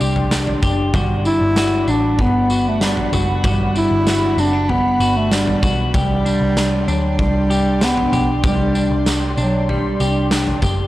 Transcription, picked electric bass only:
0.01 C2
0.63 F#1
0.94 G1
1.41 G1
1.88 A1
2.19 G1
3.13 F#1
3.44 G1
3.91 G1
4.37 F#1
5.00 G1
5.63 B1
5.94 C2
6.41 C2
6.87 D2
7.19 C2
8.13 B1
8.44 C2
8.91 C2
9.37 B1
10.00 C2
10.63 F#1

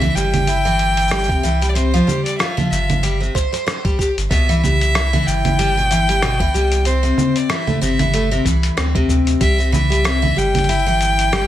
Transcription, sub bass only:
Already playing: C2
0.15 G1
1.43 C2
2.72 G1
4.18 G1
4.31 C2
5.27 G1
6.55 C2
7.82 G1
8.45 C2
8.78 D2
9.41 C2
10.37 G1

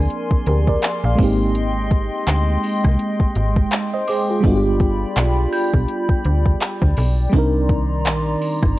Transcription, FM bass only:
0.31 D2
0.47 D2
1.04 A#1
1.19 G#1
2.27 D2
2.85 C2
3.20 G#1
3.36 G#1
4.44 G1
5.17 B1
5.74 B1
6.09 D2
6.25 D2
6.82 D2
6.98 B1
7.33 C2
8.06 A#1
8.63 G1

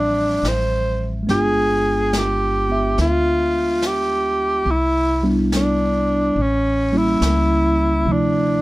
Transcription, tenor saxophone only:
Already playing: D4
0.48 C5
1.31 G#4
2.18 G4
3.01 F4
3.87 G4
4.71 E4
5.56 D4
6.42 C#4
6.98 E4
8.13 D4

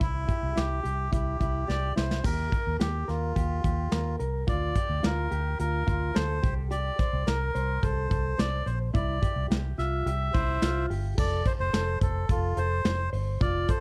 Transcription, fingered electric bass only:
0.01 C2
0.43 C2
0.57 C2
0.85 C2
1.13 C2
1.41 C2
1.69 C2
1.97 C2
2.25 D#2
2.67 D#2
2.80 D#2
3.09 D#2
3.36 D#2
3.64 D#2
3.92 D#2
4.20 C2
4.48 D2
4.90 D2
5.04 D2
5.32 D2
5.60 D2
5.88 D2
6.16 D2
6.44 C2
7.13 C2
7.27 C2
7.55 C2
7.83 C2
8.11 C2
8.39 C2
8.66 A#1
8.95 C2
9.36 C2
9.50 C2
9.78 C2
10.06 C2
10.35 C2
10.62 C2
10.90 G1
11.18 F1
11.60 F1
11.73 F1
12.01 F1
12.30 F1
12.57 F1
12.85 F1
13.13 G1
13.41 F1

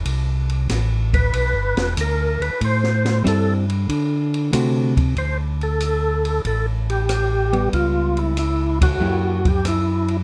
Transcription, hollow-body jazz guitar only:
3.24 G3 C4 E4
4.53 D3 A3 C4 F#4
7.53 G3 B3
9.00 F#3 A#3 E4 G4

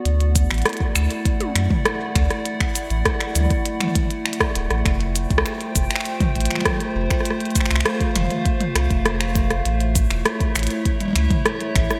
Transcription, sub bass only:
0.05 D2
0.50 A1
0.95 D2
1.55 F#2
2.15 D2
2.90 A1
3.36 D2
4.56 D1
4.70 A1
4.86 F1
5.31 C2
5.75 F1
6.36 A1
6.96 F1
7.71 C2
8.16 F1
8.76 C2
8.90 F1
9.66 A1
10.11 E1
10.56 A1
11.15 C#2
11.76 A1

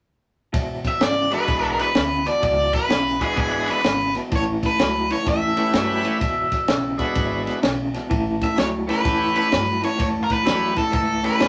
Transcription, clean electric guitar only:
0.53 E2 B2
1.01 E2 C#3
1.31 E2 B2
1.48 E2 B2
1.95 E2 C#3
2.25 E2 B2
2.42 E2 B2
2.89 E2 C#3
3.20 E2 B2
3.36 E2 B2
3.84 E2 C#3
4.15 E2 B2
4.31 A2 E3
4.80 A2 F#3
5.10 A2 E3
5.26 A2 E3
5.74 A2 F#3
6.04 A2 E3
6.20 E2 B2
6.68 E2 C#3
6.99 E2 B2
7.15 E2 B2
7.62 E2 C#3
7.94 E2 B2
8.10 A2 E3
8.56 A2 F#3
8.87 A2 E3
9.04 A2 E3
9.51 A2 F#3
9.81 A2 E3
9.97 A2 E3
10.45 A2 F#3
10.75 A2 E3
10.91 A2 E3
11.39 A2 F#3

